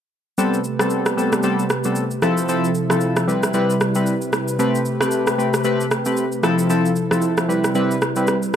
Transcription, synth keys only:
0.38 0.59 G3 medium
0.38 0.59 B3 medium
0.38 0.59 C4 medium
0.38 0.59 A4 medium
0.80 1.15 G3 medium
0.80 1.15 B3 medium
0.80 1.15 C4 medium
0.80 1.15 A4 medium
1.17 1.42 G3 medium
1.17 1.42 B3 medium
1.17 1.42 C4 medium
1.17 1.42 A4 medium
1.43 1.64 G3 medium
1.43 1.64 B3 medium
1.43 1.65 C4 medium
1.43 1.65 A4 medium
1.85 2.04 G3 medium
1.85 2.04 B3 medium
1.85 2.04 C4 medium
1.85 2.04 A4 medium
2.22 2.47 F3 medium
2.22 2.47 C4 medium
2.22 2.47 E4 medium
2.22 2.47 A4 loud
2.49 2.70 F3 medium
2.49 2.70 C4 medium
2.49 2.70 E4 medium
2.49 2.70 A4 medium
2.90 3.25 F3 medium
2.90 3.25 C4 medium
2.90 3.25 E4 medium
2.90 3.25 A4 medium
3.28 3.52 G3 medium
3.28 3.52 C4 medium
3.28 3.52 E4 medium
3.28 3.53 B4 medium
3.54 3.75 G3 medium
3.54 3.75 C4 medium
3.54 3.75 E4 medium
3.54 3.75 B4 loud
3.96 4.14 G3 medium
3.96 4.14 C4 medium
3.96 4.15 E4 medium
3.96 4.15 B4 medium
4.59 4.80 A3 medium
4.59 4.80 C4 medium
4.59 4.80 G4 medium
4.59 4.80 B4 medium
5.01 5.36 A3 medium
5.01 5.36 C4 medium
5.01 5.36 G4 medium
5.01 5.36 B4 medium
5.38 5.63 A3 medium
5.38 5.63 C4 medium
5.38 5.63 G4 medium
5.38 5.63 B4 medium
5.64 5.85 A3 medium
5.64 5.85 C4 medium
5.64 5.86 G4 medium
5.64 5.86 B4 loud
6.06 6.25 A3 medium
6.06 6.25 C4 medium
6.06 6.25 G4 medium
6.06 6.25 B4 medium
6.43 6.68 F3 medium
6.43 6.68 C4 medium
6.43 6.68 E4 medium
6.43 6.68 A4 loud
6.70 6.91 F3 medium
6.70 6.91 C4 medium
6.70 6.91 E4 medium
6.70 6.91 A4 loud
7.11 7.46 F3 medium
7.11 7.46 C4 medium
7.11 7.46 E4 medium
7.11 7.46 A4 medium
7.49 7.73 G3 medium
7.49 7.73 C4 medium
7.49 7.74 E4 medium
7.49 7.74 B4 medium
7.75 7.96 G3 medium
7.75 7.96 C4 medium
7.75 7.96 E4 medium
7.75 7.96 B4 loud
8.16 8.35 G3 medium
8.16 8.35 C4 medium
8.16 8.35 E4 medium
8.16 8.36 B4 medium

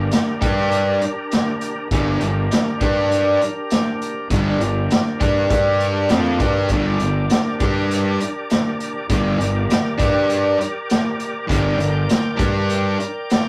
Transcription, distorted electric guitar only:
0.41 1.00 G3 medium
0.41 1.01 D4 medium
0.41 1.01 G4 medium
1.92 2.20 G2 medium
1.92 2.21 D3 medium
1.92 2.21 G3 medium
2.22 2.45 G2 medium
2.22 2.46 D3 medium
2.81 3.40 G3 medium
2.81 3.40 D4 medium
2.81 3.40 G4 medium
4.32 4.60 G2 medium
4.32 4.60 D3 medium
4.32 4.61 G3 medium
4.62 4.85 G2 medium
4.62 4.85 D3 medium
5.20 5.49 G3 medium
5.20 5.50 D4 medium
5.20 5.49 G4 medium
5.50 6.09 G3 medium
5.50 6.09 D4 medium
5.50 6.10 G4 medium
6.09 6.39 F3 medium
6.09 6.39 C4 medium
6.09 6.40 F4 medium
6.39 6.68 G3 medium
6.39 6.69 D4 medium
6.39 6.69 G4 medium
6.71 6.99 G2 medium
6.71 7.00 D3 loud
6.71 7.00 G3 medium
7.00 7.24 G2 medium
7.00 7.24 D3 medium
7.60 8.19 G3 medium
7.60 8.19 D4 medium
7.60 8.19 G4 medium
9.10 9.38 G2 medium
9.10 9.37 D3 medium
9.10 9.39 G3 medium
9.38 9.63 G2 medium
9.38 9.63 D3 medium
9.97 10.57 G3 medium
9.97 10.57 D4 medium
9.97 10.58 G4 medium
11.47 11.77 G2 medium
11.47 11.77 D3 medium
11.47 11.78 G3 medium
11.78 12.03 G2 medium
11.78 12.03 D3 medium
12.37 12.97 G3 medium
12.37 12.97 D4 medium
12.37 12.98 G4 medium

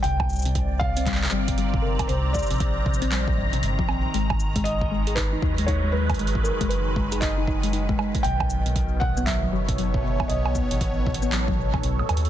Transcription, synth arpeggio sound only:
0.04 0.16 C3 medium
0.46 0.53 C3 loud
0.81 0.96 C3 medium
0.97 1.01 C4 loud
1.07 1.19 G3 medium
1.22 1.30 C2 medium
1.32 1.40 G3 loud
1.48 1.56 C3 medium
1.58 1.70 G3 medium
1.74 1.81 C3 medium
1.83 1.99 C3 medium
2.09 2.21 C3 medium
2.51 2.58 C3 loud
2.86 3.01 C3 medium
3.02 3.06 C4 loud
3.12 3.24 G3 medium
3.27 3.35 C2 medium
3.37 3.50 G2 loud
3.53 3.62 C3 medium
3.63 3.75 G2 medium
3.79 3.86 F3 medium
3.89 4.01 C4 medium
4.14 4.27 G#3 medium
4.56 4.63 G#3 loud
4.91 5.06 G#3 medium
5.07 5.12 G#4 loud
5.17 5.29 D#4 medium
5.33 5.41 D#4 medium
5.42 5.50 D#4 loud
5.58 5.66 G#3 medium
5.68 5.80 D#4 medium
5.84 5.92 G#3 medium
5.94 6.09 G#3 medium
6.19 6.32 G#3 medium
6.61 6.68 G#3 loud
6.96 7.11 G#3 medium
7.12 7.17 G#4 loud
7.22 7.34 D#4 medium
7.38 7.46 D#4 medium
7.47 7.55 D#4 loud
7.63 7.71 G#3 medium
7.73 7.86 D#4 medium
7.89 7.97 G#3 medium
7.99 8.14 G#3 medium
8.24 8.37 B2 medium
8.66 8.74 B2 loud
9.01 9.16 B2 medium
9.17 9.22 B3 loud
9.27 9.39 F#3 medium
9.43 9.51 F#3 medium
9.53 9.60 F#3 loud
9.69 9.76 B2 medium
9.78 9.91 F#3 medium
9.94 10.02 B2 medium
10.04 10.19 B2 medium
10.30 10.42 B2 medium
10.71 10.79 B2 loud
11.06 11.22 B2 medium
11.22 11.27 B3 loud
11.32 11.44 F#3 medium
11.48 11.57 F#3 medium
11.58 11.70 B2 medium
11.74 11.78 B2 medium
11.83 11.91 B2 loud
11.99 12.04 A2 medium
12.09 12.16 F#2 medium

